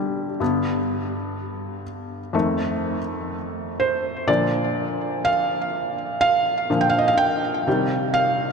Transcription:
0, 0, Header, 1, 2, 480
1, 0, Start_track
1, 0, Tempo, 967742
1, 202, Time_signature, 4, 2, 24, 8
1, 4227, End_track
2, 0, Start_track
2, 0, Title_t, "Felt piano"
2, 0, Program_c, 0, 0
2, 0, Control_c, 0, 64, 127
2, 0, Note_on_c, 0, 43, 58
2, 0, Note_on_c, 0, 50, 46
2, 0, Note_on_c, 0, 55, 49
2, 184, Note_off_c, 0, 43, 0
2, 188, Note_off_c, 0, 50, 0
2, 196, Note_off_c, 0, 55, 0
2, 200, Note_on_c, 0, 43, 48
2, 204, Note_on_c, 0, 50, 42
2, 206, Note_on_c, 0, 59, 50
2, 209, Control_c, 0, 64, 0
2, 300, Control_c, 0, 64, 127
2, 901, Note_off_c, 0, 43, 0
2, 903, Note_off_c, 0, 50, 0
2, 904, Note_off_c, 0, 59, 0
2, 1157, Note_on_c, 0, 41, 55
2, 1160, Note_on_c, 0, 51, 51
2, 1164, Note_on_c, 0, 57, 66
2, 1169, Control_c, 0, 64, 0
2, 1267, Control_c, 0, 64, 127
2, 1479, Note_off_c, 0, 41, 0
2, 1481, Note_off_c, 0, 51, 0
2, 1482, Note_off_c, 0, 57, 0
2, 1883, Note_on_c, 0, 72, 78
2, 2119, Note_on_c, 0, 46, 54
2, 2121, Note_on_c, 0, 74, 88
2, 2122, Note_on_c, 0, 50, 51
2, 2126, Note_on_c, 0, 53, 57
2, 2129, Control_c, 0, 64, 0
2, 2130, Note_off_c, 0, 72, 0
2, 2204, Control_c, 0, 64, 127
2, 2602, Note_on_c, 0, 77, 96
2, 2616, Note_off_c, 0, 74, 0
2, 3072, Note_off_c, 0, 77, 0
2, 3079, Note_on_c, 0, 77, 108
2, 3315, Note_off_c, 0, 46, 0
2, 3317, Note_off_c, 0, 50, 0
2, 3319, Note_off_c, 0, 53, 0
2, 3322, Note_on_c, 0, 46, 52
2, 3324, Note_on_c, 0, 50, 47
2, 3326, Note_on_c, 0, 53, 55
2, 3377, Note_on_c, 0, 79, 88
2, 3389, Note_off_c, 0, 77, 0
2, 3420, Note_on_c, 0, 77, 92
2, 3424, Note_off_c, 0, 79, 0
2, 3465, Note_on_c, 0, 75, 81
2, 3469, Note_off_c, 0, 77, 0
2, 3511, Note_on_c, 0, 77, 88
2, 3514, Note_off_c, 0, 75, 0
2, 3542, Note_off_c, 0, 46, 0
2, 3543, Note_off_c, 0, 50, 0
2, 3544, Note_off_c, 0, 53, 0
2, 3559, Note_off_c, 0, 77, 0
2, 3559, Note_on_c, 0, 79, 111
2, 3803, Note_on_c, 0, 48, 59
2, 3807, Note_on_c, 0, 51, 55
2, 3808, Control_c, 0, 64, 0
2, 3808, Note_on_c, 0, 55, 67
2, 3888, Control_c, 0, 64, 127
2, 4021, Note_off_c, 0, 79, 0
2, 4036, Note_on_c, 0, 77, 98
2, 4227, Note_off_c, 0, 48, 0
2, 4227, Note_off_c, 0, 51, 0
2, 4227, Note_off_c, 0, 55, 0
2, 4227, Note_off_c, 0, 77, 0
2, 4227, End_track
0, 0, End_of_file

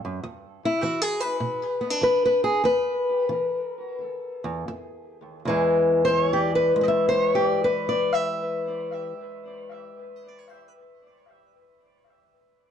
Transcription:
0, 0, Header, 1, 2, 480
1, 0, Start_track
1, 0, Tempo, 588235
1, 189, Time_signature, 4, 2, 24, 8
1, 1151, Tempo, 616016
1, 2111, Tempo, 663717
1, 3071, Tempo, 714286
1, 3551, Tempo, 780234
1, 8487, End_track
2, 0, Start_track
2, 0, Title_t, "Steel-string acoustic guitar"
2, 0, Program_c, 0, 25
2, 0, Note_on_c, 0, 69, 84
2, 38, Note_on_c, 0, 42, 58
2, 188, Note_off_c, 0, 42, 0
2, 192, Note_on_c, 0, 40, 79
2, 195, Note_off_c, 0, 69, 0
2, 533, Note_on_c, 0, 64, 86
2, 636, Note_off_c, 0, 40, 0
2, 663, Note_on_c, 0, 66, 94
2, 676, Note_on_c, 0, 52, 60
2, 829, Note_off_c, 0, 64, 0
2, 829, Note_on_c, 0, 68, 86
2, 982, Note_off_c, 0, 68, 0
2, 982, Note_on_c, 0, 71, 85
2, 1123, Note_off_c, 0, 52, 0
2, 1145, Note_on_c, 0, 47, 66
2, 1305, Note_off_c, 0, 66, 0
2, 1461, Note_on_c, 0, 59, 44
2, 1534, Note_off_c, 0, 59, 0
2, 1534, Note_on_c, 0, 62, 41
2, 1589, Note_off_c, 0, 47, 0
2, 1620, Note_off_c, 0, 71, 0
2, 1620, Note_on_c, 0, 52, 58
2, 1635, Note_on_c, 0, 71, 85
2, 1790, Note_off_c, 0, 71, 0
2, 1809, Note_on_c, 0, 71, 89
2, 1949, Note_off_c, 0, 71, 0
2, 1952, Note_on_c, 0, 68, 94
2, 2076, Note_off_c, 0, 52, 0
2, 2105, Note_off_c, 0, 62, 0
2, 2106, Note_on_c, 0, 40, 77
2, 2113, Note_off_c, 0, 68, 0
2, 2116, Note_on_c, 0, 71, 97
2, 2547, Note_off_c, 0, 40, 0
2, 2580, Note_on_c, 0, 52, 55
2, 3037, Note_off_c, 0, 52, 0
2, 3388, Note_on_c, 0, 40, 58
2, 3545, Note_off_c, 0, 40, 0
2, 3548, Note_on_c, 0, 41, 64
2, 3553, Note_off_c, 0, 71, 0
2, 3984, Note_off_c, 0, 41, 0
2, 4024, Note_on_c, 0, 40, 69
2, 4038, Note_on_c, 0, 52, 64
2, 4049, Note_on_c, 0, 56, 59
2, 4390, Note_on_c, 0, 72, 92
2, 4464, Note_off_c, 0, 72, 0
2, 4464, Note_on_c, 0, 73, 92
2, 4564, Note_on_c, 0, 67, 84
2, 4611, Note_off_c, 0, 73, 0
2, 4611, Note_on_c, 0, 74, 92
2, 4698, Note_off_c, 0, 67, 0
2, 4701, Note_on_c, 0, 71, 79
2, 4825, Note_off_c, 0, 40, 0
2, 4827, Note_off_c, 0, 56, 0
2, 4827, Note_on_c, 0, 56, 70
2, 4852, Note_off_c, 0, 71, 0
2, 4860, Note_on_c, 0, 71, 69
2, 4866, Note_off_c, 0, 74, 0
2, 4874, Note_on_c, 0, 74, 69
2, 4899, Note_off_c, 0, 74, 0
2, 4902, Note_on_c, 0, 76, 72
2, 5026, Note_off_c, 0, 76, 0
2, 5029, Note_on_c, 0, 72, 93
2, 5109, Note_off_c, 0, 72, 0
2, 5109, Note_on_c, 0, 73, 93
2, 5188, Note_off_c, 0, 71, 0
2, 5191, Note_on_c, 0, 67, 71
2, 5268, Note_off_c, 0, 73, 0
2, 5268, Note_on_c, 0, 74, 93
2, 5368, Note_off_c, 0, 67, 0
2, 5371, Note_on_c, 0, 71, 79
2, 5514, Note_off_c, 0, 74, 0
2, 5522, Note_on_c, 0, 74, 83
2, 5669, Note_off_c, 0, 74, 0
2, 5669, Note_on_c, 0, 76, 91
2, 6283, Note_off_c, 0, 52, 0
2, 6868, Note_off_c, 0, 56, 0
2, 6874, Note_off_c, 0, 76, 0
2, 6874, Note_on_c, 0, 75, 91
2, 6920, Note_off_c, 0, 71, 0
2, 6973, Note_off_c, 0, 75, 0
2, 6973, Note_on_c, 0, 74, 91
2, 7071, Note_off_c, 0, 74, 0
2, 7071, Note_on_c, 0, 73, 91
2, 7163, Note_off_c, 0, 73, 0
2, 7163, Note_on_c, 0, 72, 91
2, 7263, Note_off_c, 0, 72, 0
2, 8487, End_track
0, 0, End_of_file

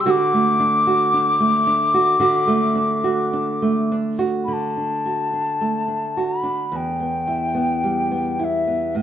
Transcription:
0, 0, Header, 1, 3, 480
1, 0, Start_track
1, 0, Key_signature, 2, "major"
1, 0, Tempo, 1077199
1, 31, Time_signature, 4, 2, 24, 8
1, 991, Tempo, 1142857
1, 1951, Tempo, 1117318
1, 3890, End_track
2, 0, Start_track
2, 0, Title_t, "Flute"
2, 0, Program_c, 0, 73
2, 3, Note_on_c, 0, 88, 69
2, 47, Note_on_c, 0, 86, 104
2, 54, Note_off_c, 0, 88, 0
2, 1721, Note_off_c, 0, 86, 0
2, 1925, Note_on_c, 0, 83, 55
2, 1960, Note_on_c, 0, 81, 60
2, 1967, Note_off_c, 0, 83, 0
2, 2696, Note_on_c, 0, 83, 56
2, 2702, Note_off_c, 0, 81, 0
2, 2919, Note_on_c, 0, 79, 64
2, 2926, Note_off_c, 0, 83, 0
2, 3640, Note_on_c, 0, 76, 57
2, 3647, Note_off_c, 0, 79, 0
2, 3876, Note_off_c, 0, 76, 0
2, 3890, End_track
3, 0, Start_track
3, 0, Title_t, "Nylon-string guitar"
3, 0, Program_c, 1, 24
3, 0, Note_on_c, 1, 48, 75
3, 0, Note_on_c, 1, 55, 48
3, 0, Note_on_c, 1, 62, 49
3, 25, Note_on_c, 1, 50, 78
3, 28, Note_on_c, 1, 66, 65
3, 72, Note_off_c, 1, 55, 0
3, 75, Note_off_c, 1, 48, 0
3, 149, Note_on_c, 1, 57, 57
3, 265, Note_off_c, 1, 62, 0
3, 266, Note_on_c, 1, 62, 52
3, 386, Note_off_c, 1, 66, 0
3, 388, Note_on_c, 1, 66, 52
3, 505, Note_off_c, 1, 62, 0
3, 507, Note_on_c, 1, 62, 48
3, 623, Note_off_c, 1, 57, 0
3, 625, Note_on_c, 1, 57, 46
3, 742, Note_off_c, 1, 62, 0
3, 744, Note_on_c, 1, 62, 49
3, 864, Note_off_c, 1, 66, 0
3, 866, Note_on_c, 1, 66, 52
3, 976, Note_off_c, 1, 50, 0
3, 978, Note_on_c, 1, 50, 61
3, 981, Note_off_c, 1, 66, 0
3, 983, Note_on_c, 1, 66, 55
3, 1095, Note_off_c, 1, 57, 0
3, 1096, Note_on_c, 1, 57, 54
3, 1211, Note_off_c, 1, 62, 0
3, 1213, Note_on_c, 1, 62, 47
3, 1332, Note_off_c, 1, 66, 0
3, 1334, Note_on_c, 1, 66, 51
3, 1455, Note_off_c, 1, 62, 0
3, 1457, Note_on_c, 1, 62, 50
3, 1577, Note_off_c, 1, 57, 0
3, 1578, Note_on_c, 1, 57, 48
3, 1700, Note_off_c, 1, 62, 0
3, 1702, Note_on_c, 1, 62, 53
3, 1814, Note_off_c, 1, 66, 0
3, 1816, Note_on_c, 1, 66, 51
3, 1937, Note_off_c, 1, 50, 0
3, 1938, Note_on_c, 1, 50, 49
3, 2062, Note_off_c, 1, 62, 0
3, 2064, Note_on_c, 1, 62, 35
3, 2184, Note_off_c, 1, 66, 0
3, 2186, Note_on_c, 1, 66, 42
3, 2300, Note_off_c, 1, 62, 0
3, 2305, Note_on_c, 1, 62, 34
3, 2422, Note_off_c, 1, 57, 0
3, 2423, Note_on_c, 1, 57, 36
3, 2534, Note_off_c, 1, 62, 0
3, 2540, Note_on_c, 1, 62, 41
3, 2660, Note_off_c, 1, 66, 0
3, 2665, Note_on_c, 1, 66, 34
3, 2772, Note_off_c, 1, 62, 0
3, 2777, Note_on_c, 1, 62, 41
3, 2899, Note_on_c, 1, 40, 56
3, 2952, Note_off_c, 1, 62, 0
3, 2953, Note_off_c, 1, 50, 0
3, 2954, Note_off_c, 1, 57, 0
3, 2955, Note_off_c, 1, 66, 0
3, 3021, Note_on_c, 1, 59, 38
3, 3139, Note_on_c, 1, 64, 41
3, 3254, Note_off_c, 1, 59, 0
3, 3256, Note_on_c, 1, 59, 41
3, 3380, Note_on_c, 1, 55, 41
3, 3498, Note_off_c, 1, 59, 0
3, 3500, Note_on_c, 1, 59, 41
3, 3617, Note_off_c, 1, 64, 0
3, 3619, Note_on_c, 1, 64, 47
3, 3738, Note_off_c, 1, 59, 0
3, 3740, Note_on_c, 1, 59, 43
3, 3858, Note_on_c, 1, 45, 61
3, 3866, Note_off_c, 1, 40, 0
3, 3890, Note_off_c, 1, 45, 0
3, 3890, Note_off_c, 1, 55, 0
3, 3890, Note_off_c, 1, 59, 0
3, 3890, Note_off_c, 1, 64, 0
3, 3890, End_track
0, 0, End_of_file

